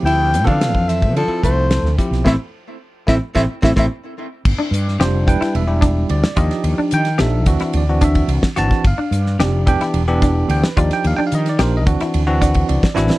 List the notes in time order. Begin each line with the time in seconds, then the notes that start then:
Already playing: F3 C4 E4 G4
0.03 D2 E4 G5
0.07 ride
0.34 hi-hat pedal, ride
0.45 D3 E3 F3 C4 D4 A4 F5, kick, ride
0.61 snare, ride
0.75 F2, kick
0.88 C4 E5, hi-hat pedal, ride
1.02 kick, ride
1.14 D3 F3 A4, ride
1.27 F3 C4 E4 A4, muted fretless electric bass stroke
1.43 C2 A3 C5, kick, hi-hat pedal, ride
1.71 snare, ride
1.83 D2, snare
1.98 F3 C4 E4 G4, kick, hi-hat pedal, ride
2.11 B1, snare, ride
2.24 A1 A3 C4 E4 E5, kick, snare
3.07 A1 A3 C4 E4 E5, kick, snare
3.35 A1 A3 C4 E4 E5, kick, snare
3.62 A1 A3 C4 E4 E5, kick, snare
3.76 A1 A3 C4 E4 E5, kick, snare
4.45 G1, kick, crash
4.57 D4, muted fretless electric bass stroke
4.71 G2, hi-hat pedal, ride
4.88 snare
4.99 F1 G3 D4 F4 G4 C5, snare, ride
5.27 E1 G3 D4 E4 B4 G5, kick, hi-hat pedal, ride
5.41 E4, snare, ride
5.54 E1 E5, ride
5.67 G3 D4 E4 G4
5.81 D4, kick, snare, hi-hat pedal, ride
6.09 D2 D5, ride
6.23 muted fretless electric bass stroke, snare
6.36 D#2 F3 D4 D#4 F4 G4 D#5, kick, hi-hat pedal, ride
6.51 snare, ride
6.64 D#2, ride
6.78 D4, muted fretless electric bass stroke
6.91 D#3 G5, hi-hat pedal, ride
7.05 snare, ride
7.18 A#1 F3 D4 D#4 G4 A4 E5, snare, ride
7.46 D2 E3 C4 D4 F#4, kick, hi-hat pedal, ride
7.60 E4, muted fretless electric bass stroke, snare, ride
7.73 D2 D5, ride
7.89 E3 C4 D4 F#4
8.01 D4 E5, kick, snare, hi-hat pedal, ride
8.15 kick, ride
8.28 C2, ride
8.43 kick, snare
8.56 G#1 E3 C4 D4 F#4 A5, hi-hat pedal, ride
8.71 kick, snare
8.84 G1 F5, kick, ride
8.98 D4
9.11 G2, hi-hat pedal, ride
9.26 snare
9.39 F1 F3 C4 D4 G4 D5, snare, ride
9.66 E1 E3 B3 D4 G4 G5, kick, hi-hat pedal, ride
9.81 E4, muted fretless electric bass stroke, snare, ride
9.94 E1, ride
10.08 E3 B3 D4 G4
10.22 D4, kick, snare, hi-hat pedal, ride
10.48 D2 G5, ride
10.63 B4, muted fretless electric bass stroke, snare
10.76 D#2 F3 D4 D#4 F4 G4 D5, kick, hi-hat pedal, ride
10.91 G5, snare, ride
11.04 D#2 F5, ride
11.16 D4 G5, muted fretless electric bass stroke
11.27 F5
11.32 D#3 D#5, hi-hat pedal, ride
11.46 D5, snare, ride
11.59 A#1 F3 D4 D#4 G4 A#4, snare, ride
11.63 C5
11.77 D#5
11.86 D2 E3 C4 D4 F#4, kick, hi-hat pedal, ride
12.00 E4, muted fretless electric bass stroke, snare, ride
12.14 D2, ride
12.27 E3 C4 D4 F#4
12.41 D4 F#5, kick, snare, hi-hat pedal, ride
12.54 kick, ride
12.69 C2 D5, ride
12.83 kick, snare
12.95 A1 E3 C4 D4 E4 F#4, snare, hi-hat pedal
13.10 snare